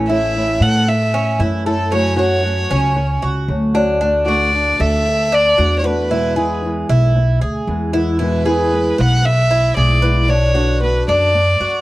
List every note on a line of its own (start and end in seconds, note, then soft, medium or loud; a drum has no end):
0.00 0.57 A1 medium
0.09 0.35 A3 soft
0.09 0.35 C#4 medium
0.09 0.34 E4 medium
0.09 0.60 E4 medium
0.09 0.64 E5 medium
0.36 0.86 E3 soft
0.36 0.86 A3 soft
0.36 0.87 C#4 soft
0.36 0.87 E4 soft
0.60 1.35 A2 medium
0.60 1.12 A4 medium
0.60 0.90 F#5 medium
0.88 1.40 E5 medium
0.88 muted nylon-string guitar stroke medium
1.14 1.39 C#4 medium
1.39 2.64 F#2 medium
1.39 1.65 E3 soft
1.39 1.65 A3 soft
1.39 1.66 C#4 soft
1.39 1.65 E4 medium
1.39 1.64 E4 soft
1.66 1.91 A3 soft
1.66 1.91 C#4 medium
1.66 1.91 E4 medium
1.66 1.91 A4 medium
1.91 2.17 C#3 medium
1.91 2.17 F#3 medium
1.91 2.17 A3 medium
1.91 2.17 C#4 medium
1.91 2.16 C#4 medium
1.91 2.15 F#4 medium
1.91 2.17 C#5 medium
2.16 2.41 F#3 medium
2.16 2.42 A3 medium
2.16 2.43 C#4 medium
2.16 2.42 F#4 medium
2.16 2.69 F#4 medium
2.16 3.19 C#5 medium
2.43 2.94 F#3 soft
2.43 2.95 A3 soft
2.43 2.95 C#4 soft
2.43 2.95 F#4 soft
2.70 3.19 C#2 medium
2.70 3.21 C#4 medium
2.95 muted nylon-string guitar stroke soft
3.22 3.47 C#2 medium
3.22 3.73 F#4 medium
3.48 4.73 D2 medium
3.48 3.74 F#3 soft
3.48 3.74 A3 soft
3.48 3.74 C#4 soft
3.48 3.73 F#4 medium
3.74 4.00 F#3 medium
3.74 4.01 A3 medium
3.74 4.00 C#4 medium
3.74 4.00 D4 medium
3.74 4.00 F#4 medium
4.01 4.26 D3 medium
4.01 4.27 A3 medium
4.01 4.26 D4 medium
4.01 4.25 F#4 medium
4.26 4.52 A3 medium
4.26 4.52 D4 medium
4.26 4.52 F#4 medium
4.26 4.79 F#4 medium
4.26 4.82 D5 medium
4.53 5.04 D3 soft
4.53 5.05 A3 soft
4.53 5.05 D4 soft
4.53 5.05 F#4 soft
4.80 5.54 D2 medium
4.80 5.30 A4 medium
4.80 5.36 E5 medium
5.06 muted nylon-string guitar stroke medium
5.32 5.58 D4 medium
5.32 5.78 D5 loud
5.57 6.83 E2 medium
5.57 5.83 D3 soft
5.57 5.83 A3 soft
5.57 5.84 D4 soft
5.57 5.83 F#4 medium
5.57 5.83 F#4 soft
5.79 5.86 C#5 medium
5.84 6.10 A3 soft
5.84 6.10 D4 medium
5.84 6.09 F#4 medium
5.84 6.10 B4 medium
5.84 6.63 B4 medium
6.10 6.35 B2 medium
6.10 6.36 E3 medium
6.10 6.36 G#3 medium
6.10 6.36 B3 medium
6.10 6.36 E4 medium
6.10 6.35 E4 medium
6.36 6.62 E3 medium
6.36 6.63 G#3 medium
6.36 6.62 B3 medium
6.36 6.62 E4 medium
6.36 6.87 G#4 medium
6.63 7.14 E3 soft
6.63 7.14 G#3 soft
6.63 7.15 B3 soft
6.63 7.15 E4 soft
6.89 7.38 B1 medium
6.89 7.40 E4 medium
7.16 muted nylon-string guitar stroke medium
7.41 7.66 D2 medium
7.41 7.92 G#4 medium
7.67 8.92 E2 medium
7.67 7.93 E3 soft
7.67 7.93 G#3 soft
7.67 7.93 B3 soft
7.67 7.92 E4 soft
7.93 8.19 E3 medium
7.93 8.19 G#3 soft
7.93 8.19 B3 medium
7.93 8.18 E4 medium
7.93 8.19 E4 medium
8.19 8.45 B2 medium
8.19 8.45 E3 medium
8.19 8.45 G#3 medium
8.19 8.45 B3 medium
8.19 8.45 E4 medium
8.19 8.44 E4 medium
8.19 9.02 B4 medium
8.45 8.70 E3 medium
8.45 8.72 G#3 medium
8.45 8.71 B3 medium
8.45 8.71 E4 medium
8.45 8.97 G#4 medium
8.71 9.23 E3 soft
8.71 9.24 G#3 soft
8.71 9.24 B3 soft
8.71 9.24 E4 soft
8.98 9.73 B1 medium
8.98 9.49 B4 medium
8.98 9.27 F#5 medium
9.25 9.77 E5 loud
9.25 muted nylon-string guitar stroke medium
9.51 9.76 E4 medium
9.77 11.01 B1 medium
9.77 10.02 E3 soft
9.77 10.02 G#3 soft
9.77 10.02 B3 soft
9.77 10.01 E4 soft
9.77 10.02 G#4 medium
9.77 10.32 D5 medium
10.02 10.28 E3 soft
10.02 10.28 G#3 medium
10.02 10.27 B3 medium
10.02 10.28 E4 medium
10.02 10.28 B4 medium
10.28 10.54 B2 medium
10.28 10.54 D3 medium
10.28 10.54 B3 medium
10.28 10.54 D4 medium
10.28 10.53 F#4 medium
10.28 10.82 C#5 medium
10.55 10.81 D3 medium
10.55 10.81 B3 medium
10.55 10.81 D4 medium
10.55 10.80 F#4 medium
10.55 11.06 F#4 medium
10.82 11.33 D3 soft
10.82 11.33 B3 soft
10.82 11.34 D4 soft
10.82 11.34 F#4 soft
10.82 11.07 B4 medium
11.08 11.56 F#2 medium
11.08 11.59 D4 medium
11.08 11.81 D5 medium
11.34 muted nylon-string guitar stroke medium
11.60 11.81 F#2 medium
11.60 11.81 F#4 medium